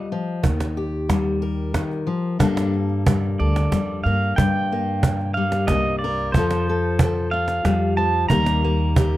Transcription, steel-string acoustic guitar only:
0.00 0.11 G3 medium
0.00 0.40 F4 medium
0.00 0.41 D#5 medium
0.12 0.44 F3 medium
0.43 1.74 D#3 medium
0.77 2.42 G4 soft
1.09 2.06 G3 medium
1.42 2.42 A#4 medium
1.75 2.08 D#3 medium
2.07 2.40 F3 medium
2.39 4.38 G2 medium
2.39 3.05 G3 medium
2.39 4.05 A#3 medium
2.39 2.74 D4 medium
2.39 3.39 A4 medium
3.06 3.70 G3 medium
3.40 4.34 A4 medium
3.72 4.34 G3 medium
4.06 4.71 A#3 soft
4.39 6.35 G2 medium
4.72 5.69 A#3 soft
5.37 6.36 G3 medium
5.70 6.35 A#3 medium
6.04 6.32 A#4 medium
6.36 7.65 F3 medium
6.36 7.32 F4 medium
6.36 6.68 A4 medium
6.69 7.01 A4 medium
7.03 8.29 A4 medium
7.33 8.28 F4 medium
7.66 7.98 G3 medium
7.98 8.30 F3 medium
8.30 9.17 D#3 medium
8.30 9.17 G3 medium
8.30 8.63 A#3 medium
8.30 8.97 G4 medium
8.30 9.17 A#4 medium
8.64 9.17 A#3 medium
8.97 9.17 G4 medium

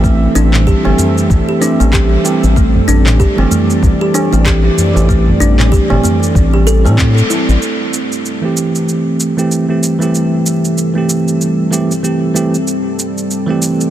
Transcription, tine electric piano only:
0.00 0.80 E3 medium
0.00 0.81 A3 medium
0.00 0.81 C4 medium
0.00 0.82 G4 loud
0.83 1.57 E3 medium
0.83 1.58 A3 medium
0.83 1.59 C4 medium
0.83 1.59 G4 medium
1.60 1.81 E3 medium
1.60 1.81 A3 medium
1.60 1.82 C4 medium
1.60 1.82 G4 loud
1.92 2.21 E3 medium
1.92 2.21 A3 medium
1.92 2.22 C4 medium
1.92 2.22 G4 medium
2.23 2.44 E3 medium
2.23 2.44 A3 medium
2.23 2.45 C4 medium
2.23 2.45 G4 loud
3.36 4.27 E3 loud
3.36 4.28 A3 medium
3.36 4.29 C4 medium
3.40 4.29 G4 loud
4.31 4.59 E3 medium
4.31 4.59 A3 medium
4.31 4.60 C4 medium
4.31 4.60 G4 medium
4.63 4.90 E3 medium
4.63 4.90 A3 medium
4.63 4.90 C4 medium
4.63 4.91 G4 medium
4.94 5.85 E3 medium
4.94 5.86 A3 medium
4.94 5.86 C4 medium
4.94 5.87 G4 loud
5.88 6.63 E3 medium
5.88 6.63 A3 medium
5.88 6.64 C4 medium
5.88 6.64 G4 medium
6.84 7.00 E3 medium
6.84 7.00 A3 medium
6.84 7.01 C4 medium
6.84 7.01 A4 loud
8.41 9.32 E3 medium
8.41 9.33 A3 medium
8.41 9.34 C4 medium
8.45 9.35 G4 medium
9.37 9.65 E3 medium
9.37 9.65 A3 medium
9.37 9.65 C4 medium
9.37 9.66 G4 medium
9.68 9.95 E3 medium
9.68 9.95 A3 medium
9.68 9.96 C4 medium
9.68 9.96 G4 medium
9.99 10.90 E3 medium
9.99 10.91 A3 medium
9.99 10.92 C4 medium
9.99 10.92 G4 medium
10.94 11.68 E3 medium
10.94 11.69 A3 medium
10.94 11.69 C4 medium
10.94 11.70 G4 medium
11.71 11.91 E3 medium
11.71 11.92 A3 medium
11.71 11.92 C4 medium
11.71 11.92 G4 medium
12.03 12.32 E3 medium
12.03 12.32 A3 medium
12.03 12.32 C4 medium
12.03 12.33 G4 medium
12.34 12.55 E3 medium
12.34 12.55 A3 medium
12.34 12.55 C4 medium
12.34 12.56 G4 medium
13.47 13.90 E3 medium
13.47 13.90 A3 medium
13.47 13.90 C4 medium
13.47 13.90 G4 medium

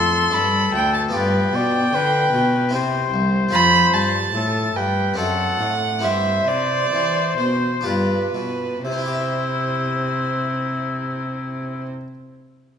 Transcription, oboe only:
0.00 1.10 A4 medium
1.16 1.57 B4 medium
1.56 1.96 D5 medium
1.95 2.73 B4 medium
2.74 4.18 C5 medium
4.35 4.78 A4 medium
4.76 5.17 B4 medium
5.17 5.71 A4 medium
6.03 7.87 C5 medium
7.86 8.34 B4 medium
8.84 11.86 E4 medium

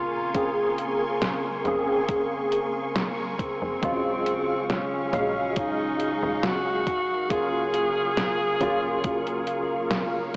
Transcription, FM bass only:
0.00 0.95 A#1 medium
1.65 2.69 F1 medium
3.62 3.79 F1 medium
3.83 5.08 D#1 medium
5.13 6.17 A#1 medium
6.23 6.88 D#1 medium
6.87 7.91 G#1 medium
8.61 9.65 D#1 medium

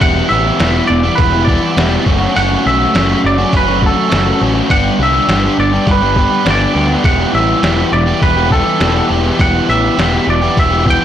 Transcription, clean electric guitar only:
0.01 0.28 F#5 loud
0.29 0.87 E5 medium
0.87 1.19 D5 medium
1.15 1.44 B4 medium
1.45 2.01 D5 medium
2.36 2.66 F#5 loud
2.67 3.26 E5 medium
3.26 3.52 D5 medium
3.57 3.85 B4 medium
3.86 4.39 A4 medium
4.71 5.01 F#5 loud
5.03 5.59 E5 medium
5.60 5.89 D5 medium
5.91 6.50 B4 medium
6.50 6.89 D5 medium
7.05 7.34 F#5 medium
7.35 7.93 E5 medium
7.93 8.20 D5 medium
8.23 8.51 B4 medium
8.52 9.07 A4 medium
9.41 9.68 F#5 medium
9.70 10.30 E5 medium
10.30 10.56 D5 medium
10.59 10.86 E5 medium
10.90 11.05 G5 medium

